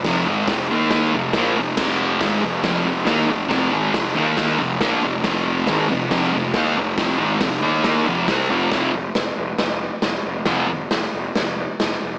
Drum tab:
CC |--------|x-------|--------|--------|
HH |o-o-o-o-|--o-o-o-|o-o-o-o-|o-o-o-o-|
SD |o-o-o-o-|o-o-o-o-|o-o-o-o-|o-o-o-o-|
BD |o-o-o-o-|o-o-o-o-|o-o-o-o-|o-o-o-o-|

CC |--------|--------|--------|
HH |o-o-o-o-|o-o-o-o-|o-o-o-o-|
SD |o-o-o-o-|o-o-o-o-|o-o-o-o-|
BD |o-o-o-o-|o-------|o-------|